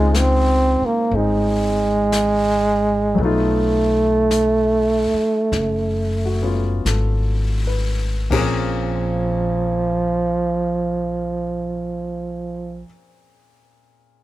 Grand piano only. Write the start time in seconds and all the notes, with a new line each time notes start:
Already playing: C#3 G#3 C4 D#4 F4
1.13 C4 D#4
3.15 F#3 A3
3.20 B3 D#4
3.25 F4
6.25 F#4
6.41 B3 C#4 F4
6.87 A4
7.67 B4
8.30 A#2 A#3 C4 C#4 G#4